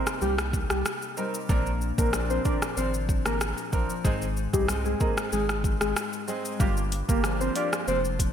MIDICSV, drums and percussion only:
0, 0, Header, 1, 2, 480
1, 0, Start_track
1, 0, Tempo, 638298
1, 1123, Time_signature, 4, 2, 24, 8
1, 6263, End_track
2, 0, Start_track
2, 0, Title_t, "Drums"
2, 50, Note_on_c, 9, 82, 67
2, 51, Note_on_c, 9, 37, 92
2, 125, Note_off_c, 9, 82, 0
2, 126, Note_off_c, 9, 37, 0
2, 162, Note_on_c, 9, 82, 67
2, 237, Note_off_c, 9, 82, 0
2, 289, Note_on_c, 9, 37, 96
2, 289, Note_on_c, 9, 82, 51
2, 364, Note_off_c, 9, 37, 0
2, 364, Note_off_c, 9, 82, 0
2, 401, Note_on_c, 9, 36, 92
2, 403, Note_on_c, 9, 82, 54
2, 477, Note_off_c, 9, 36, 0
2, 479, Note_off_c, 9, 82, 0
2, 527, Note_on_c, 9, 37, 92
2, 528, Note_on_c, 9, 82, 63
2, 602, Note_off_c, 9, 37, 0
2, 603, Note_off_c, 9, 82, 0
2, 643, Note_on_c, 9, 82, 78
2, 644, Note_on_c, 9, 37, 99
2, 718, Note_off_c, 9, 82, 0
2, 719, Note_off_c, 9, 37, 0
2, 767, Note_on_c, 9, 82, 56
2, 843, Note_off_c, 9, 82, 0
2, 881, Note_on_c, 9, 82, 53
2, 956, Note_off_c, 9, 82, 0
2, 1009, Note_on_c, 9, 82, 78
2, 1084, Note_off_c, 9, 82, 0
2, 1122, Note_on_c, 9, 82, 67
2, 1123, Note_on_c, 9, 36, 110
2, 1197, Note_off_c, 9, 82, 0
2, 1198, Note_off_c, 9, 36, 0
2, 1251, Note_on_c, 9, 82, 41
2, 1326, Note_off_c, 9, 82, 0
2, 1364, Note_on_c, 9, 82, 53
2, 1439, Note_off_c, 9, 82, 0
2, 1491, Note_on_c, 9, 36, 93
2, 1491, Note_on_c, 9, 82, 79
2, 1566, Note_off_c, 9, 36, 0
2, 1566, Note_off_c, 9, 82, 0
2, 1602, Note_on_c, 9, 37, 85
2, 1605, Note_on_c, 9, 82, 75
2, 1677, Note_off_c, 9, 37, 0
2, 1680, Note_off_c, 9, 82, 0
2, 1730, Note_on_c, 9, 82, 46
2, 1805, Note_off_c, 9, 82, 0
2, 1841, Note_on_c, 9, 82, 54
2, 1845, Note_on_c, 9, 36, 89
2, 1916, Note_off_c, 9, 82, 0
2, 1920, Note_off_c, 9, 36, 0
2, 1971, Note_on_c, 9, 82, 69
2, 1972, Note_on_c, 9, 37, 89
2, 2046, Note_off_c, 9, 82, 0
2, 2047, Note_off_c, 9, 37, 0
2, 2083, Note_on_c, 9, 82, 67
2, 2158, Note_off_c, 9, 82, 0
2, 2211, Note_on_c, 9, 82, 51
2, 2286, Note_off_c, 9, 82, 0
2, 2322, Note_on_c, 9, 36, 92
2, 2325, Note_on_c, 9, 82, 54
2, 2397, Note_off_c, 9, 36, 0
2, 2400, Note_off_c, 9, 82, 0
2, 2448, Note_on_c, 9, 37, 93
2, 2449, Note_on_c, 9, 82, 65
2, 2523, Note_off_c, 9, 37, 0
2, 2524, Note_off_c, 9, 82, 0
2, 2563, Note_on_c, 9, 82, 79
2, 2564, Note_on_c, 9, 37, 99
2, 2639, Note_off_c, 9, 82, 0
2, 2640, Note_off_c, 9, 37, 0
2, 2688, Note_on_c, 9, 82, 53
2, 2764, Note_off_c, 9, 82, 0
2, 2801, Note_on_c, 9, 82, 55
2, 2804, Note_on_c, 9, 36, 85
2, 2876, Note_off_c, 9, 82, 0
2, 2879, Note_off_c, 9, 36, 0
2, 2930, Note_on_c, 9, 82, 77
2, 3005, Note_off_c, 9, 82, 0
2, 3043, Note_on_c, 9, 36, 107
2, 3043, Note_on_c, 9, 82, 68
2, 3118, Note_off_c, 9, 36, 0
2, 3118, Note_off_c, 9, 82, 0
2, 3171, Note_on_c, 9, 82, 43
2, 3246, Note_off_c, 9, 82, 0
2, 3285, Note_on_c, 9, 82, 55
2, 3360, Note_off_c, 9, 82, 0
2, 3411, Note_on_c, 9, 36, 89
2, 3411, Note_on_c, 9, 82, 79
2, 3486, Note_off_c, 9, 36, 0
2, 3487, Note_off_c, 9, 82, 0
2, 3523, Note_on_c, 9, 37, 88
2, 3526, Note_on_c, 9, 82, 77
2, 3598, Note_off_c, 9, 37, 0
2, 3601, Note_off_c, 9, 82, 0
2, 3650, Note_on_c, 9, 82, 46
2, 3726, Note_off_c, 9, 82, 0
2, 3761, Note_on_c, 9, 82, 49
2, 3765, Note_on_c, 9, 36, 93
2, 3836, Note_off_c, 9, 82, 0
2, 3841, Note_off_c, 9, 36, 0
2, 3891, Note_on_c, 9, 82, 69
2, 3892, Note_on_c, 9, 37, 97
2, 3966, Note_off_c, 9, 82, 0
2, 3967, Note_off_c, 9, 37, 0
2, 4003, Note_on_c, 9, 82, 67
2, 4079, Note_off_c, 9, 82, 0
2, 4130, Note_on_c, 9, 37, 89
2, 4130, Note_on_c, 9, 82, 53
2, 4205, Note_off_c, 9, 37, 0
2, 4205, Note_off_c, 9, 82, 0
2, 4242, Note_on_c, 9, 36, 92
2, 4245, Note_on_c, 9, 82, 51
2, 4317, Note_off_c, 9, 36, 0
2, 4320, Note_off_c, 9, 82, 0
2, 4369, Note_on_c, 9, 37, 94
2, 4369, Note_on_c, 9, 82, 65
2, 4444, Note_off_c, 9, 37, 0
2, 4445, Note_off_c, 9, 82, 0
2, 4484, Note_on_c, 9, 82, 78
2, 4485, Note_on_c, 9, 37, 101
2, 4560, Note_off_c, 9, 82, 0
2, 4561, Note_off_c, 9, 37, 0
2, 4608, Note_on_c, 9, 82, 52
2, 4684, Note_off_c, 9, 82, 0
2, 4721, Note_on_c, 9, 82, 53
2, 4796, Note_off_c, 9, 82, 0
2, 4851, Note_on_c, 9, 82, 78
2, 4926, Note_off_c, 9, 82, 0
2, 4963, Note_on_c, 9, 36, 117
2, 4963, Note_on_c, 9, 82, 68
2, 5038, Note_off_c, 9, 36, 0
2, 5038, Note_off_c, 9, 82, 0
2, 5091, Note_on_c, 9, 82, 44
2, 5166, Note_off_c, 9, 82, 0
2, 5204, Note_on_c, 9, 42, 76
2, 5204, Note_on_c, 9, 82, 53
2, 5280, Note_off_c, 9, 42, 0
2, 5280, Note_off_c, 9, 82, 0
2, 5331, Note_on_c, 9, 36, 94
2, 5331, Note_on_c, 9, 82, 76
2, 5406, Note_off_c, 9, 36, 0
2, 5406, Note_off_c, 9, 82, 0
2, 5443, Note_on_c, 9, 37, 91
2, 5446, Note_on_c, 9, 82, 72
2, 5518, Note_off_c, 9, 37, 0
2, 5521, Note_off_c, 9, 82, 0
2, 5571, Note_on_c, 9, 82, 48
2, 5646, Note_off_c, 9, 82, 0
2, 5681, Note_on_c, 9, 42, 70
2, 5681, Note_on_c, 9, 82, 52
2, 5756, Note_off_c, 9, 42, 0
2, 5756, Note_off_c, 9, 82, 0
2, 5811, Note_on_c, 9, 82, 67
2, 5812, Note_on_c, 9, 37, 93
2, 5886, Note_off_c, 9, 82, 0
2, 5887, Note_off_c, 9, 37, 0
2, 5923, Note_on_c, 9, 82, 70
2, 5998, Note_off_c, 9, 82, 0
2, 6050, Note_on_c, 9, 82, 51
2, 6125, Note_off_c, 9, 82, 0
2, 6162, Note_on_c, 9, 36, 89
2, 6165, Note_on_c, 9, 42, 76
2, 6165, Note_on_c, 9, 82, 53
2, 6237, Note_off_c, 9, 36, 0
2, 6240, Note_off_c, 9, 42, 0
2, 6240, Note_off_c, 9, 82, 0
2, 6263, End_track
0, 0, End_of_file